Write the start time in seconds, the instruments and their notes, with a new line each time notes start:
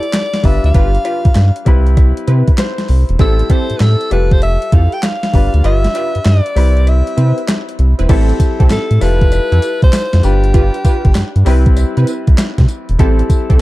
Already playing: grand piano G3 E4 F4 A4, alto saxophone D5
0.03 closed hi-hat
0.13 snare, clap, closed hi-hat, cowbell
0.34 snare, closed hi-hat
0.43 analog synth bass G1, grand piano G3 D4 F4 B4, alto saxophone E5, kick, open hi-hat
0.64 analog synth bass D2, alto saxophone F5, closed hi-hat
0.74 analog synth bass G1, analog polysynth F4 G4 B4, kick, closed hi-hat, cowbell
0.95 closed hi-hat
1.05 analog polysynth F4 G4 B4, closed hi-hat, cowbell
1.25 analog synth bass G2, kick, closed hi-hat
1.35 analog synth bass G2, snare, clap, closed hi-hat, cowbell
1.56 closed hi-hat
1.65 analog synth bass C2, grand piano G3 C4 E4 B4, kick, closed hi-hat, cowbell
1.87 closed hi-hat
1.97 kick, closed hi-hat, cowbell
2.17 closed hi-hat
2.27 analog synth bass C3, analog polysynth C4 E4 B4, closed hi-hat
2.47 kick, closed hi-hat
2.58 grand piano C5, snare, clap, closed hi-hat, cowbell
2.78 snare, closed hi-hat
2.88 analog synth bass C2, open hi-hat
3.09 analog synth bass E1, closed hi-hat
3.19 analog synth bass A1, grand piano G3 C4 E4 A4, analog polysynth C4 G4 A4, alto saxophone A4, kick, closed hi-hat, cowbell
3.39 closed hi-hat
3.50 analog polysynth C4 G4 A4, alto saxophone C5, kick, closed hi-hat, cowbell
3.70 analog synth bass A2, closed hi-hat
3.77 analog synth bass A2, alto saxophone B4, snare, clap, closed hi-hat, cowbell
3.82 alto saxophone A4
4.01 closed hi-hat
4.10 analog synth bass F1, grand piano G3 F4 G4 A4, alto saxophone B4, closed hi-hat, cowbell
4.31 alto saxophone C5, kick, closed hi-hat
4.42 alto saxophone E5, closed hi-hat, cowbell
4.62 closed hi-hat
4.72 analog synth bass F2, analog polysynth E4 G4 A4, alto saxophone F5, kick, closed hi-hat
4.92 alto saxophone G5, closed hi-hat
5.03 alto saxophone F5, snare, clap, closed hi-hat, cowbell
5.23 snare, closed hi-hat
5.33 analog synth bass G1, grand piano G3 D4 F4 B4, kick, open hi-hat
5.54 analog synth bass D2, closed hi-hat
5.64 analog synth bass G1, analog polysynth F4 G4 B4, alto saxophone E5, closed hi-hat, cowbell
5.84 snare, closed hi-hat
5.95 analog polysynth F4 G4 B4, closed hi-hat, cowbell
6.15 analog synth bass G2, closed hi-hat
6.25 analog synth bass G2, alto saxophone D5, snare, clap, closed hi-hat, cowbell
6.46 closed hi-hat
6.55 analog synth bass C2, grand piano G3 C4 E4 B4, open hi-hat, cowbell
6.77 closed hi-hat
6.87 alto saxophone E5, closed hi-hat, cowbell
7.07 closed hi-hat
7.17 analog synth bass C3, analog polysynth C4 E4 B4, closed hi-hat
7.38 closed hi-hat
7.48 snare, clap, closed hi-hat, cowbell
7.69 closed hi-hat
7.79 analog synth bass C2, closed hi-hat
7.99 analog synth bass E1, analog polysynth C4 E4 B4, closed hi-hat
8.09 analog synth bass A1, grand piano G3 C4 E4 A4, analog polysynth C4 G4 A4, kick, closed hi-hat, crash, cowbell
8.29 closed hi-hat
8.40 kick, closed hi-hat, tambourine
8.60 analog synth bass C2, analog polysynth C4 G4 A4, kick, closed hi-hat
8.70 analog synth bass A2, alto saxophone A4, snare, clap, closed hi-hat, tambourine, cowbell
8.91 analog synth bass A2, closed hi-hat
9.00 analog synth bass F1, grand piano G3 E4 F4 A4, alto saxophone B4, open hi-hat, tambourine, cowbell
9.21 kick, closed hi-hat
9.32 closed hi-hat, tambourine, cowbell
9.52 analog synth bass F2, analog polysynth E4 G4 A4, closed hi-hat
9.62 closed hi-hat, tambourine
9.82 analog synth bass C2, alto saxophone C5, kick, closed hi-hat
9.93 snare, clap, closed hi-hat, tambourine, cowbell
10.13 analog synth bass F2, snare, closed hi-hat
10.22 analog synth bass G1, grand piano G3 D4 F4 B4, alto saxophone G4, closed hi-hat, tambourine
10.44 closed hi-hat
10.54 analog polysynth F4 G4 B4, kick, closed hi-hat, cowbell
10.74 closed hi-hat
10.85 analog polysynth F4 G4 B4, kick, closed hi-hat, tambourine
11.05 analog synth bass G1, kick, closed hi-hat
11.15 analog synth bass G2, snare, clap, closed hi-hat, tambourine, cowbell
11.36 analog synth bass G2, closed hi-hat
11.45 analog synth bass C2, grand piano G3 C4 E4 B4, analog polysynth C4 E4 B4, open hi-hat, tambourine, cowbell
11.66 kick, closed hi-hat
11.77 closed hi-hat, tambourine, cowbell
11.97 analog synth bass C3, analog polysynth C4 E4 B4, closed hi-hat
12.07 closed hi-hat, tambourine
12.27 analog synth bass C2, kick, closed hi-hat
12.38 snare, clap, closed hi-hat, tambourine, cowbell
12.58 analog synth bass C3, kick, snare, closed hi-hat
12.68 closed hi-hat, tambourine
12.89 analog synth bass E1, closed hi-hat
12.99 analog synth bass A1, grand piano G3 C4 E4 A4, analog polysynth C4 G4 A4, kick, closed hi-hat, cowbell
13.19 closed hi-hat
13.30 kick, closed hi-hat, tambourine
13.49 analog synth bass C2, analog polysynth C4 G4 A4, kick, closed hi-hat